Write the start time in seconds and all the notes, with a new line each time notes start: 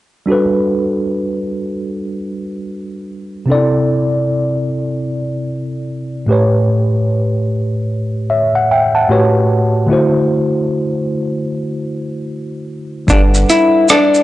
0.26 G3 D4 F#4
0.30 A4 B4
3.46 C3 C4 D4
3.50 A4 D5
3.55 E4
6.26 A2 A3 G4
6.31 B4 C#5
8.30 C#5 E5
8.55 F#5
8.71 E5 G5
8.95 F#5 A5
9.09 A2 A3 F#4 G4 B4 C#5
9.87 D3 A3 E4
9.91 F#4 C5
13.07 G1 G3 D4 F#5, kick, shaker
13.12 A4 B4
13.34 shaker
13.50 E4, closed hi-hat, shaker
13.88 D4, cross-stick, shaker
14.14 shaker